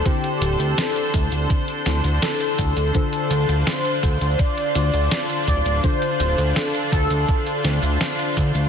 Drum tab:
HH |xxxxxxxxxxxxxxxx|xxxxxxxxxxxxxxxx|xxxxxxxxxxxxxxxx|
SH |x-xxx-xxx-xxx-xx|x-xxx-xxx-xxx-xx|x-xxx-xxx-xxx-xx|
SD |----o-----o-o---|----o-------o---|----o-----o-o---|
BD |o-----o-o-----o-|o-----o-o-----o-|o-----o-o-----o-|